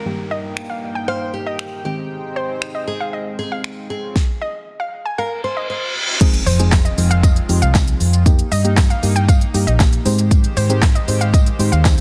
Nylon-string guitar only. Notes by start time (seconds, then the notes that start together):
Already playing: A#4
1.08 C5
1.34 G4
1.85 G4
2.87 G#4
3.39 G#4
3.90 G#4
5.18 A#4
5.44 C5
5.70 C5